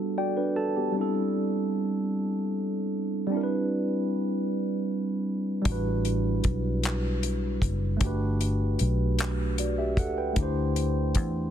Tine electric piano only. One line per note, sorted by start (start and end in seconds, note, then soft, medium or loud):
0.00 0.89 G3 medium
0.00 0.12 B3 medium
0.00 0.14 D4 medium
0.00 0.15 F#4 medium
0.00 0.16 A4 medium
0.18 0.36 F#4 medium
0.18 0.36 D5 medium
0.18 0.54 G5 medium
0.37 0.56 D4 medium
0.37 0.55 B4 medium
0.56 0.75 A4 medium
0.56 0.93 A5 medium
0.76 1.13 B3 medium
0.76 1.13 G4 medium
0.92 3.25 G3 medium
0.92 3.26 C4 medium
0.97 3.27 D4 medium
0.97 3.28 E4 medium
1.01 3.29 A4 medium
3.27 5.60 G3 medium
3.27 5.61 C4 medium
3.32 5.62 D4 medium
3.32 5.64 E4 medium
3.37 3.40 A#4 medium
3.43 5.68 B4 medium
5.62 7.95 G3 medium
5.62 7.96 D4 medium
5.67 7.97 E4 medium
5.67 7.99 F#4 medium
5.72 8.00 B4 medium
7.97 10.30 A3 medium
7.97 10.31 D4 medium
8.02 9.55 F#4 medium
8.02 9.56 G4 medium
8.07 9.57 B4 medium
9.59 9.78 F#4 soft
9.59 9.77 D5 medium
9.78 9.97 G4 medium
9.78 9.96 E5 medium
9.99 10.17 A4 medium
9.99 10.17 F#5 medium
10.18 10.55 B4 medium
10.18 10.54 G5 medium
10.33 11.50 A3 medium
10.33 11.50 D4 medium
10.38 11.50 E4 medium
10.38 11.50 G4 medium
10.43 11.50 C5 loud